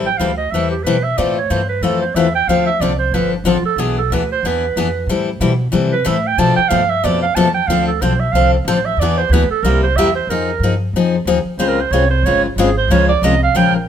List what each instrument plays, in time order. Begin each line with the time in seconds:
Already playing: upright bass A1
0.06 clarinet G5
0.18 upright bass D2, steel-string acoustic guitar E3 G3 C4 E4 A4, clarinet F5
0.37 clarinet D#5
0.51 upright bass E2, steel-string acoustic guitar E3, clarinet E5
0.55 steel-string acoustic guitar G3 C4 E4 A4
0.70 clarinet G4
0.84 upright bass B2, steel-string acoustic guitar E3 G3 C4 E4 A4, clarinet B4
1.03 clarinet E5
1.18 upright bass A2, steel-string acoustic guitar E3 A3 C4 F4 A4, clarinet D5
1.38 clarinet C#5
1.50 upright bass G2, steel-string acoustic guitar E3 A3 C4 F4 A4, clarinet C5
1.69 clarinet B4
1.81 upright bass F2, steel-string acoustic guitar E3 A3 C4 F4 A4, clarinet A4
2.02 clarinet C5
2.15 upright bass E2, steel-string acoustic guitar E3 A3 C4 F4 A4, clarinet E5
2.35 clarinet G5
2.47 upright bass D2, steel-string acoustic guitar D3 F3 C4 D4 A4, clarinet F5
2.66 clarinet E5
2.80 upright bass C2, steel-string acoustic guitar D3 F3 C4 D4 A4, clarinet D5
2.99 clarinet C5
3.11 upright bass G1, steel-string acoustic guitar D3 F3 C4 D4 A4, clarinet B4
3.34 clarinet D4
3.44 upright bass A1, steel-string acoustic guitar D3 F3 C4 D4 A4, clarinet F4
3.63 clarinet A4, muted upright bass stroke
3.76 upright bass B1, steel-string acoustic guitar E3 B3 D4 G#4, clarinet G#4
3.98 clarinet A4
4.10 upright bass D2, steel-string acoustic guitar E3 B3 D4 G#4, clarinet B4
4.32 clarinet C5
4.43 upright bass E2, steel-string acoustic guitar E3 B3 D4 G#4, clarinet B4
4.76 upright bass F2, steel-string acoustic guitar E3 B3 D4 G#4
5.07 upright bass A2, steel-string acoustic guitar E3 G3 C4 E4 A4
5.40 upright bass B2, steel-string acoustic guitar E3 G3 C4 E4 A4
5.72 upright bass C3, steel-string acoustic guitar E3 G3 C4 E4 A4
5.93 clarinet B4
6.05 upright bass A2, steel-string acoustic guitar E3 G3 C4 E4 A4, clarinet E5
6.27 clarinet G5
6.38 upright bass B2, steel-string acoustic guitar B2 F3 A3 D4 A4, clarinet A5
6.56 clarinet G5, muted upright bass stroke
6.69 upright bass G2, steel-string acoustic guitar B2 F3 A3 D4 A4, clarinet F5
6.89 clarinet E5
7.04 upright bass F2, steel-string acoustic guitar B2 F3 A3 D4 A4, clarinet D5
7.22 clarinet F5
7.35 upright bass E2, steel-string acoustic guitar B2 F3 A3 D4 A4, clarinet A5
7.54 clarinet G5
7.68 upright bass D2, steel-string acoustic guitar D3 F3 C4 D4 A4, clarinet F5
7.88 clarinet A4
8.01 upright bass B1, steel-string acoustic guitar D3 F3 C4 D4 A4, clarinet C5
8.20 clarinet E5
8.32 upright bass C2, steel-string acoustic guitar D3 F3 C4 D4 A4, clarinet F5
8.54 clarinet A4
8.65 upright bass A1, steel-string acoustic guitar D3 F3 C4 D4 A4, clarinet C5
8.85 clarinet E5
8.97 upright bass E2, clarinet D5
9.01 steel-string acoustic guitar E3 B3 D4 G#4
9.18 clarinet C5
9.29 upright bass D2, steel-string acoustic guitar E3, clarinet B4
9.34 steel-string acoustic guitar B3 D4 G#4
9.50 clarinet A4, muted upright bass stroke
9.63 upright bass C2, steel-string acoustic guitar C3 G3 A#3 E4 G4, clarinet A#4
9.84 clarinet C5
9.95 upright bass E2, steel-string acoustic guitar C3 G3 A#3 E4 G4, clarinet E5
10.16 clarinet C5
10.27 upright bass F2, steel-string acoustic guitar F3 C4, clarinet A#4
10.31 steel-string acoustic guitar D#4 G#4
10.60 upright bass G2, steel-string acoustic guitar F3 C4
10.64 steel-string acoustic guitar D#4 G#4
10.93 upright bass F2, steel-string acoustic guitar F3 C4 D#4 G#4
11.25 upright bass D#2, steel-string acoustic guitar F3 C4 D#4 G#4
11.45 muted upright bass stroke
11.58 upright bass C#2, steel-string acoustic guitar C#3 G#3 C4 F4 G#4, clarinet C5
11.68 clarinet A#4
11.81 clarinet C5
11.90 upright bass C2, steel-string acoustic guitar C#3 G#3 C4 F4 G#4, clarinet C#5
12.11 clarinet C5
12.23 upright bass G1, steel-string acoustic guitar C#3 G#3 C4 F4, clarinet C#5
12.27 steel-string acoustic guitar G#4
12.45 clarinet F4
12.56 upright bass G#1, steel-string acoustic guitar C#3 G#3 C4 F4 G#4, clarinet G#4
12.78 clarinet C5
12.88 upright bass C#2, steel-string acoustic guitar C#3 F3 G#3 C#4 F4 A#4, clarinet C#5
13.09 clarinet D5
13.22 upright bass C2, steel-string acoustic guitar C#3 F3 G#3 C#4 F4 A#4, clarinet D#5
13.43 clarinet F5
13.54 upright bass A#1, steel-string acoustic guitar C#3 F3 G#3 C#4 F4 A#4, clarinet G5
13.76 clarinet A#4